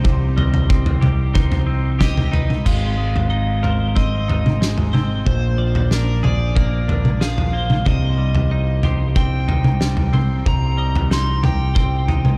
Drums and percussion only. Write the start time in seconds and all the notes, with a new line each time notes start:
0.05 kick, floor tom
0.38 floor tom
0.54 floor tom
0.70 kick
0.86 floor tom
1.02 floor tom, mid tom
1.35 kick, floor tom
1.52 floor tom
2.01 kick, snare, mid tom
2.17 floor tom, mid tom
2.33 floor tom
2.50 mid tom
2.66 kick, floor tom, crash
3.16 floor tom
3.64 floor tom
3.96 kick
4.29 floor tom
4.46 mid tom
4.62 snare
4.78 floor tom
4.94 mid tom
5.26 kick, floor tom
5.75 floor tom
5.91 snare
6.24 floor tom, mid tom
6.56 kick
6.89 floor tom
7.05 mid tom
7.21 snare
7.38 floor tom
7.70 mid tom
7.86 kick, floor tom
8.35 floor tom
8.83 floor tom
9.16 kick
9.49 floor tom
9.64 mid tom
9.81 snare
9.97 floor tom
10.13 mid tom
10.46 kick, floor tom
10.95 floor tom
11.11 snare
11.44 floor tom, mid tom
11.76 kick
12.08 floor tom
12.25 mid tom